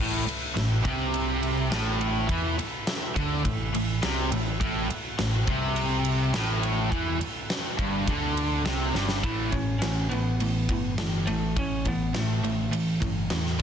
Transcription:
Already playing: tonewheel organ A3
0.00 picked electric bass A1, overdriven electric guitar A2, tonewheel organ E4 B4, crash
0.26 muted overdriven electric guitar stroke, muted distorted electric guitar stroke, muted picked electric bass stroke, ride
0.56 picked electric bass A1, overdriven electric guitar A2, snare, ride
0.83 picked electric bass C2, overdriven electric guitar C3, kick, ride
1.14 ride
1.43 ride
1.70 picked electric bass A1, overdriven electric guitar A2, snare, ride
2.01 ride
2.28 picked electric bass E2, overdriven electric guitar E3, kick, ride
2.57 muted picked electric bass stroke, muted overdriven electric guitar stroke, muted distorted electric guitar stroke, ride
2.87 snare, ride
3.16 picked electric bass D2, overdriven electric guitar D3, kick, ride
3.45 picked electric bass A1, overdriven electric guitar A2, kick, ride
3.74 picked electric bass A1, overdriven electric guitar A2, ride
4.03 picked electric bass C2, overdriven electric guitar C3, snare, ride
4.32 picked electric bass A1, overdriven electric guitar A2, ride
4.60 picked electric bass A1, overdriven electric guitar A2, tonewheel organ F#4, kick, ride
4.89 muted distorted electric guitar stroke, muted overdriven electric guitar stroke, muted picked electric bass stroke, ride
5.19 picked electric bass A1, overdriven electric guitar A2, snare, ride
5.47 picked electric bass C2, overdriven electric guitar C3, kick, ride
5.76 ride
6.05 ride
6.33 picked electric bass A1, overdriven electric guitar A2, snare, ride
6.63 ride
6.92 picked electric bass E2, overdriven electric guitar E3, kick, ride
7.21 muted picked electric bass stroke, muted distorted electric guitar stroke, muted overdriven electric guitar stroke, ride
7.50 snare, ride
7.79 picked electric bass G1, overdriven electric guitar G2, kick, ride
8.07 picked electric bass D2, overdriven electric guitar D3, kick, ride
8.37 ride
8.65 picked electric bass C2, overdriven electric guitar C3, snare, ride
8.93 picked electric bass G1, overdriven electric guitar G2, snare
9.09 snare
9.23 picked electric bass A1, overdriven electric guitar A2 E3 A3, lead electric guitar E4, kick, ride
9.51 picked electric bass A1, overdriven electric guitar A2 E3, lead electric guitar C#4, kick, ride
9.79 picked electric bass A1, overdriven electric guitar A2 E3, lead electric guitar C#4, snare, ride
10.09 picked electric bass A1, overdriven electric guitar A2 E3, lead electric guitar B3, ride
10.40 picked electric bass A1, overdriven electric guitar A2 E3, ride
10.69 picked electric bass G1, overdriven electric guitar A2 E3, kick, ride
10.98 picked electric bass G1, overdriven electric guitar A2 E3, snare, ride
11.27 picked electric bass A1, overdriven electric guitar A2 E3, lead electric guitar A3, ride
11.56 picked electric bass A1, overdriven electric guitar A2 E3, lead electric guitar C#4, kick, ride
11.85 picked electric bass A1, overdriven electric guitar A2 E3, lead electric guitar B3, kick, ride
12.13 picked electric bass A1, overdriven electric guitar A2 E3, snare, ride
12.18 lead electric guitar A3
12.43 picked electric bass A1, overdriven electric guitar A2 E3, ride
12.71 picked electric bass A1, overdriven electric guitar A2 E3, ride
13.00 picked electric bass G1, overdriven electric guitar A2 E3, kick, ride
13.30 picked electric bass E2, overdriven electric guitar A2 E3, snare, ride
13.46 snare
13.59 overdriven electric guitar D3

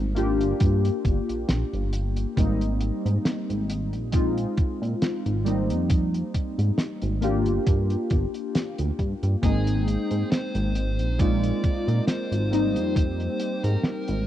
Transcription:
Already playing: analog synth bass G#1, synth keys G3 A#3 C4 D#4
0.15 synth keys A#3 D4 F4 G4, closed hi-hat
0.41 analog synth bass G1, closed hi-hat
0.60 analog synth bass G2, kick, closed hi-hat
0.85 closed hi-hat
1.05 analog synth bass G1, kick, closed hi-hat
1.29 analog synth bass A#1, closed hi-hat
1.49 analog synth bass A#1, snare, closed hi-hat
1.73 analog synth bass G1, closed hi-hat
1.93 closed hi-hat
2.16 closed hi-hat
2.36 analog synth bass G#1, synth keys G3 A#3 C4 D#4, kick, closed hi-hat
2.61 closed hi-hat
2.81 closed hi-hat
3.06 analog synth bass G#2, closed hi-hat
3.25 snare, closed hi-hat
3.50 analog synth bass G#1, closed hi-hat
3.70 closed hi-hat
3.93 analog synth bass A#1, closed hi-hat
4.12 synth keys G#3 C4 D#4 F4, kick, closed hi-hat
4.38 closed hi-hat
4.58 kick, closed hi-hat
4.82 analog synth bass A#2, closed hi-hat
5.02 snare, closed hi-hat
5.26 analog synth bass G#1, closed hi-hat
5.44 synth keys G3 A#3 C4 D#4, closed hi-hat
5.70 analog synth bass F2, closed hi-hat
5.90 kick, closed hi-hat
6.14 closed hi-hat
6.34 kick, closed hi-hat
6.58 analog synth bass G#2, closed hi-hat
6.78 snare, closed hi-hat
7.02 analog synth bass G#1, closed hi-hat
7.21 synth keys A#3 D4 F4 G4, closed hi-hat
7.46 analog synth bass G1, closed hi-hat
7.66 analog synth bass G2, kick, closed hi-hat
7.90 closed hi-hat
8.10 analog synth bass G1, kick, closed hi-hat
8.34 closed hi-hat
8.55 snare, closed hi-hat
8.78 analog synth bass D2, closed hi-hat
8.99 analog synth bass G2, kick, closed hi-hat
9.23 analog synth bass G2, closed hi-hat
9.41 analog synth bass G#1, synth keys G#3 A#3 C4 D#4, analog synth pad C4 G5, lead electric guitar G#4, kick, closed hi-hat
9.67 closed hi-hat
9.88 closed hi-hat
10.11 analog synth bass G#2, closed hi-hat
10.32 lead electric guitar C5, snare, closed hi-hat
10.55 analog synth bass G#1, closed hi-hat
10.76 closed hi-hat
10.99 analog synth bass A#1, closed hi-hat
11.18 synth keys G#3 C4 D#4 F4, analog synth pad A#3 D#4, lead electric guitar D5, kick, closed hi-hat
11.43 closed hi-hat
11.64 kick, closed hi-hat
11.88 analog synth bass A#2, closed hi-hat
12.07 lead electric guitar C5, snare, closed hi-hat
12.32 analog synth bass G#1, closed hi-hat
12.50 synth keys G3 A#3 C4 D#4, analog synth pad C4 G4, closed hi-hat
12.76 analog synth bass F2, closed hi-hat
12.96 lead electric guitar C5, kick, closed hi-hat
13.20 closed hi-hat
13.40 closed hi-hat
13.64 analog synth bass G#2, lead electric guitar A#4, closed hi-hat
13.83 snare, closed hi-hat
14.08 analog synth bass G#1, closed hi-hat

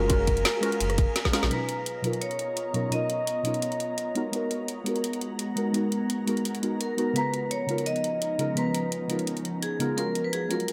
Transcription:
Already playing: sub bass F#1, synth stab G#3 C#4 F4 F#4 A#4, ambient pad G#4 F5 A#5, vibraphone A#4
0.07 synth stab G#3 C#4 F4 F#4, kick, closed hi-hat, ride bell
0.12 synth stab A#4
0.27 kick, closed hi-hat, ride bell
0.37 closed hi-hat
0.45 snare, closed hi-hat, ride bell
0.61 synth stab G#3 C#4 F4 F#4, cross-stick, closed hi-hat, ride bell
0.65 synth stab A#4
0.72 closed hi-hat
0.80 sub bass F#1, closed hi-hat, ride bell
0.90 cross-stick, closed hi-hat
0.98 kick, closed hi-hat, ride bell
1.16 snare, closed hi-hat, ride bell
1.25 kick, snare
1.32 synth stab G#3 C#4 F4 F#4 A#4, snare, open hi-hat, ride bell
1.43 sub bass A#1, snare
1.49 synth stab B2 F#3 C#4 D#4 F4, ambient pad B3 F4 C#5 D#5 A#5, vibraphone B4, closed hi-hat
1.53 synth stab A#5
1.69 closed hi-hat
1.86 closed hi-hat
2.02 synth stab B2 F#3 C#4 D#4 F4, closed hi-hat
2.06 synth stab A#4
2.13 closed hi-hat
2.21 vibraphone C#5, closed hi-hat
2.31 closed hi-hat
2.39 closed hi-hat
2.57 closed hi-hat
2.73 synth stab B2 F#3 C#4 D#4 F4 A#4, closed hi-hat
2.90 synth stab B2 F#3 C#4 D#4 F4, vibraphone D#5, closed hi-hat
2.94 synth stab A#4
3.10 closed hi-hat
3.27 closed hi-hat
3.43 synth stab B2 F#3 C#4 D#4 F4, closed hi-hat
3.47 synth stab A#4
3.54 closed hi-hat
3.62 closed hi-hat
3.72 closed hi-hat
3.80 closed hi-hat
3.98 closed hi-hat
4.14 synth stab G#3 B3 D#4 F#4 A#4, ambient pad G#3 F#4 A#5, closed hi-hat
4.31 synth stab G#3 B3 D#4 F#4, closed hi-hat
4.36 synth stab A#4
4.51 closed hi-hat
4.68 closed hi-hat
4.84 synth stab G#3 B3 D#4 F#4, closed hi-hat
4.89 synth stab A#4
4.96 closed hi-hat
5.04 closed hi-hat
5.13 closed hi-hat
5.21 closed hi-hat
5.39 closed hi-hat
5.56 synth stab G#3 B3 D#4 F#4 A#4, closed hi-hat
5.72 synth stab G#3 B3 D#4 F#4, closed hi-hat
5.77 synth stab A#4
5.92 closed hi-hat
6.10 closed hi-hat
6.26 synth stab G#3 B3 D#4 F#4 A#4, closed hi-hat
6.37 closed hi-hat
6.45 closed hi-hat
6.55 closed hi-hat
6.62 synth stab G#3 B3 D#4 F#4 A#4, closed hi-hat
6.81 vibraphone A#4, closed hi-hat
6.97 synth stab G#3 B3 D#4 F#4 A#4, closed hi-hat
7.13 synth stab C#3 G#3 B3 D#4 F4, ambient pad F3 C#4 D#4, vibraphone B4, closed hi-hat
7.18 synth stab A#5
7.34 closed hi-hat
7.51 vibraphone C#5, closed hi-hat
7.66 synth stab C#3 G#3 B3 D#4 F4, closed hi-hat
7.71 synth stab A#4
7.78 closed hi-hat
7.86 vibraphone D#5, closed hi-hat
7.96 closed hi-hat
8.04 closed hi-hat
8.22 closed hi-hat
8.38 synth stab C#3 G#3 B3 D#4 F4 A#4, closed hi-hat
8.54 synth stab C#3 G#3 B3 D#4 F4, vibraphone B4, closed hi-hat
8.59 synth stab A#5
8.75 closed hi-hat
8.92 closed hi-hat
9.07 synth stab C#3 G#3 B3 D#4 F4, closed hi-hat
9.12 synth stab A#4
9.19 closed hi-hat
9.27 closed hi-hat
9.37 closed hi-hat
9.45 closed hi-hat
9.62 vibraphone G#4, closed hi-hat
9.79 synth stab C#3 G#3 B3 D#4 F4 A#4, closed hi-hat
9.95 ambient pad F#3 G#4 A#4 F5, synth stab G#3 C#4 F4 F#4, vibraphone A#4, closed hi-hat
10.00 synth stab A#4
10.15 closed hi-hat
10.25 vibraphone B4
10.33 vibraphone G#4, closed hi-hat
10.48 synth stab G#3 C#4 F4 F#4, vibraphone A#4, closed hi-hat
10.53 synth stab A#4
10.60 closed hi-hat
10.68 closed hi-hat

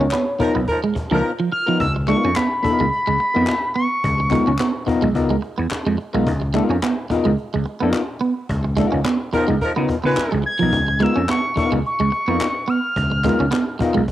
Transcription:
Already playing: analog synth lead C#5
0.01 clean electric guitar C#4
0.11 clean electric guitar B3, cajon slap, clap
0.39 horn section F3 D#4 A#4, clean electric guitar B3 D#4 F4 A#4, muted slap bass stroke, muted clean electric guitar stroke, cajon bass
0.55 slap bass B1, clean electric guitar B3
0.68 horn section F3 D#4 A#4, cajon bass, cajon slap
0.84 clean electric guitar G#3
0.95 muted clean electric guitar stroke, muted slap bass stroke, cajon bass
1.11 slap bass C#2, clean electric guitar F3 B3 D#4 F4 A#4, horn section F3 D#4 A#4
1.40 clean electric guitar F3
1.52 analog synth lead F6, muted clean electric guitar stroke
1.66 clean electric guitar F3 B3 D#4 F4 A#4
1.80 slap bass C#2, analog synth lead E6, cajon bass
1.96 muted clean electric guitar stroke
2.07 clean electric guitar G#3 B3 D#4 F4 A#4, analog synth lead C#6, cajon slap, clap
2.24 slap bass F2, clean electric guitar C#4
2.35 clean electric guitar B3, analog synth lead B5, cajon slap, clap
2.62 clean electric guitar B3 D#4 F4 A#4, analog synth lead B5, muted clean electric guitar stroke, muted slap bass stroke, cajon bass
2.80 slap bass C#2, clean electric guitar G#3
2.90 analog synth lead B5, cajon slap
3.07 slap bass C#2, clean electric guitar G#3
3.19 muted clean electric guitar stroke, cajon slap
3.34 slap bass F2, clean electric guitar B3 D#4 F4 A#4
3.47 cajon slap, clap
3.74 clean electric guitar B3, analog synth lead C#6, cajon slap
4.04 slap bass C#2, cajon bass
4.20 muted clean electric guitar stroke
4.30 clean electric guitar G#3 B3 D#4 F4 A#4, cajon bass, clap
4.47 slap bass C#2, clean electric guitar C#4
4.59 clean electric guitar B3, cajon slap, clap
4.86 clean electric guitar B3 D#4 F4 A#4, muted clean electric guitar stroke, muted slap bass stroke, cajon bass
5.02 slap bass B1, clean electric guitar G#3
5.15 slap bass C#2, clean electric guitar B3 D#4 F4 A#4, cajon bass, cajon slap
5.31 clean electric guitar G#3
5.42 muted clean electric guitar stroke, cajon slap
5.58 slap bass E2, clean electric guitar B3
5.71 muted slap bass stroke, cajon slap, clap
5.86 slap bass F2, clean electric guitar G#3
5.98 muted clean electric guitar stroke, cajon slap
6.14 slap bass B1, clean electric guitar G#3 B3 D#4 F4 A#4
6.27 slap bass C#2, cajon bass
6.42 muted clean electric guitar stroke
6.54 clean electric guitar G#3 B3 D#4 F4 A#4, cajon slap, clap
6.69 slap bass F2, clean electric guitar C#4
6.83 clean electric guitar B3, cajon slap, clap
7.10 clean electric guitar B3 D#4 F4 A#4, muted clean electric guitar stroke, muted slap bass stroke, cajon bass
7.25 slap bass C#2, clean electric guitar G#3
7.37 cajon slap
7.54 slap bass C#2, clean electric guitar G#3
7.65 muted clean electric guitar stroke, cajon slap
7.80 slap bass F2, clean electric guitar B3 D#4 F4 A#4
7.93 cajon slap, clap
8.21 clean electric guitar B3, cajon slap
8.49 slap bass C#2, cajon bass
8.65 muted clean electric guitar stroke
8.77 clean electric guitar G#3 B3 D#4 F4 A#4, cajon bass, clap
8.92 slap bass C#2, clean electric guitar C#4
9.05 clean electric guitar B3, cajon slap, clap
9.33 horn section F3 D#4 A#4, clean electric guitar B3 D#4 F4 A#4, muted clean electric guitar stroke, muted slap bass stroke, cajon bass
9.48 slap bass C#2, clean electric guitar G#3
9.61 horn section F3 D#4 A#4, muted slap bass stroke, cajon bass, cajon slap
9.76 slap bass C#3, clean electric guitar B3 D#4 F4 A#4
9.89 muted clean electric guitar stroke, cajon bass
10.04 slap bass C#3, horn section G#3 F4 B4, clean electric guitar B3 D#4 F4 A#4
10.17 muted slap bass stroke, cajon slap, clap
10.32 slap bass C#2, clean electric guitar G#3
10.44 analog synth lead G#6, muted clean electric guitar stroke
10.59 slap bass B1, clean electric guitar F3 B3 D#4 F4 A#4
10.73 slap bass C#2, cajon bass
10.88 muted clean electric guitar stroke
11.00 clean electric guitar G#3 B3 D#4 F4 A#4, analog synth lead E6, cajon slap, clap
11.16 slap bass F2, clean electric guitar C#4
11.29 clean electric guitar B3, analog synth lead C#6, cajon slap, clap
11.56 clean electric guitar B3 D#4 F4 A#4, analog synth lead C#6, muted clean electric guitar stroke, muted slap bass stroke, cajon bass
11.72 slap bass C#2, clean electric guitar G#3
11.85 analog synth lead C#6, cajon slap
12.00 slap bass C#2, clean electric guitar G#3
12.12 muted clean electric guitar stroke, cajon slap
12.28 slap bass F2, clean electric guitar B3 D#4 F4 A#4
12.41 cajon slap, clap
12.68 clean electric guitar B3, analog synth lead F6, cajon slap
12.96 slap bass C#2, cajon bass
13.12 muted clean electric guitar stroke
13.24 clean electric guitar G#3 B3 D#4 F4 A#4, cajon bass, clap
13.40 slap bass C#2, clean electric guitar C#4
13.51 clean electric guitar B3, cajon slap, clap
13.79 clean electric guitar B3 D#4 F4 A#4, muted clean electric guitar stroke, muted slap bass stroke, cajon bass
13.94 slap bass B1, clean electric guitar G#3
14.08 cajon bass, cajon slap

